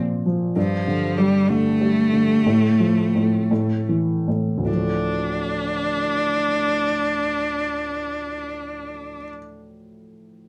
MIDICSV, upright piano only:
0, 0, Header, 1, 2, 480
1, 0, Start_track
1, 0, Key_signature, -1, "minor"
1, 0, Tempo, 609137
1, 445, Time_signature, 6, 3, 24, 8
1, 928, Tempo, 640342
1, 1888, Tempo, 712589
1, 2848, Tempo, 802139
1, 3328, Tempo, 840336
1, 6640, End_track
2, 0, Start_track
2, 0, Title_t, "Upright piano"
2, 0, Program_c, 0, 0
2, 0, Control_c, 0, 64, 127
2, 0, Note_on_c, 0, 46, 40
2, 0, Note_on_c, 0, 53, 41
2, 194, Note_off_c, 0, 53, 0
2, 205, Note_on_c, 0, 53, 43
2, 431, Note_off_c, 0, 46, 0
2, 438, Note_off_c, 0, 53, 0
2, 443, Note_on_c, 0, 43, 51
2, 456, Control_c, 0, 64, 0
2, 572, Control_c, 0, 64, 127
2, 689, Note_on_c, 0, 50, 48
2, 932, Note_on_c, 0, 55, 44
2, 1155, Note_off_c, 0, 50, 0
2, 1167, Note_on_c, 0, 50, 43
2, 1392, Note_off_c, 0, 55, 0
2, 1403, Note_on_c, 0, 55, 41
2, 1631, Note_off_c, 0, 50, 0
2, 1642, Note_on_c, 0, 50, 41
2, 1856, Note_off_c, 0, 43, 0
2, 1875, Note_off_c, 0, 55, 0
2, 1881, Note_off_c, 0, 50, 0
2, 1891, Note_on_c, 0, 45, 48
2, 1896, Control_c, 0, 64, 0
2, 2001, Control_c, 0, 64, 127
2, 2116, Note_on_c, 0, 53, 44
2, 2346, Note_off_c, 0, 45, 0
2, 2356, Note_on_c, 0, 45, 43
2, 2581, Note_off_c, 0, 53, 0
2, 2585, Note_off_c, 0, 45, 0
2, 2595, Note_on_c, 0, 45, 47
2, 2603, Control_c, 0, 64, 0
2, 2704, Control_c, 0, 64, 127
2, 2852, Note_on_c, 0, 52, 38
2, 3076, Note_off_c, 0, 45, 0
2, 3085, Note_on_c, 0, 45, 35
2, 3263, Note_on_c, 0, 38, 36
2, 3297, Note_off_c, 0, 45, 0
2, 3306, Note_on_c, 0, 45, 32
2, 3316, Note_off_c, 0, 52, 0
2, 3334, Control_c, 0, 64, 0
2, 3349, Note_on_c, 0, 53, 35
2, 3386, Note_on_c, 0, 57, 41
2, 3427, Control_c, 0, 64, 127
2, 5879, Note_off_c, 0, 38, 0
2, 5920, Note_off_c, 0, 45, 0
2, 5962, Note_off_c, 0, 53, 0
2, 6000, Note_off_c, 0, 57, 0
2, 6640, End_track
0, 0, End_of_file